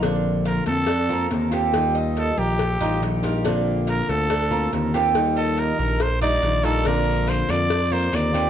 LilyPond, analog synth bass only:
\new Staff \with { instrumentName = "Analog synth bass" } { \clef bass \time 4/4 \key bes \major \tempo 4 = 141 bes,,4. f,4. ees,4~ | ees,4. bes,,4 a,,8 bes,,4~ | bes,,4. d,4. ees,4~ | ees,4. bes,,4. bes,,4~ |
bes,,4. f,4. ees,4 | }